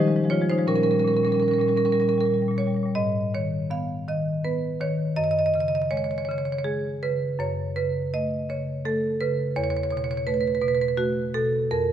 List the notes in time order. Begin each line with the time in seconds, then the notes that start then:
Already playing: D#4 C5
0.00 F3 G#3
0.08 F3 G#3
0.16 G#3
0.24 F3 G#3
0.30 F3 G#3 F4 C#5
0.41 F3 G#3
0.49 F3 G#3 D#4 C5
0.58 F3 G#3
0.67 A#2 G3 C#4 A#4
0.75 A#2 G3 C#4 A#4
0.83 A#2 G3 C#4 A#4
0.91 A#2 G3 C#4 A#4
1.00 G3 C#4 A#4
1.05 A#2 C#4 A#4
1.10 A#2 G3
1.17 G3 C#4 A#4
1.23 A#2 C#4 A#4
1.28 A#2 G3
1.32 G3 C#4 A#4
1.40 A#2 C#4 A#4
1.44 G3
1.48 A#2 G3 C#4 A#4
1.54 A#4
1.58 A#2 G3 C#4 A#4
1.67 A#2 G3 C#4 A#4
1.76 A#2 G3 C#4 A#4
1.85 A#2 G3 C#4 A#4
1.92 A#2 G3 C#4 A#4
2.00 G3 C#4 A#4
2.04 A#2
2.09 A#2 G3 C#4 A#4
2.18 A#2 G3 A#4
2.25 G3
2.30 A#2 G3
2.38 A#2
2.42 G3
2.48 A#2 G3
2.57 A#2 G3 C#5
2.66 A#2 G3
2.75 A#2 G3
2.83 A#2 G3
2.95 G#2 D#5
3.34 D#3 C#5
3.70 B3 F5
4.08 D#3 D#5
4.44 B3 B4
4.81 D#3 C#5
5.16 F#2 D#5
5.24 D#5
5.31 D#5
5.39 D#5
5.46 D#5
5.54 C#3 D#5
5.60 D#5
5.68 D#5
5.75 D#5
5.82 D#5
5.91 G#3 C#5
5.97 C#5
6.04 C#5
6.11 C#5
6.18 C#5
6.25 C#5
6.29 C#3 C#5
6.38 C#5
6.45 C#5
6.52 C#5
6.59 C#5
6.64 G#3 G#4
7.03 C#3 B4
7.39 F#2 C#5
7.76 C#3 B4
8.14 A3 D#5
8.49 C#3 C#5
8.85 A3 A4
9.21 C#3 B4
9.56 E2 C#5
9.64 C#5
9.70 C#5
9.77 C#5
9.83 C#5
9.91 B2 C#5
9.97 C#5
10.04 C#5
10.11 C#5
10.17 C#5
10.27 A3 B4
10.34 B4
10.41 B4
10.47 B4
10.55 B4
10.61 B2 B4
10.68 B4
10.75 B4
10.82 B4
10.88 B4
10.97 A3 F#4
11.34 B2 A4
11.71 F2 A#4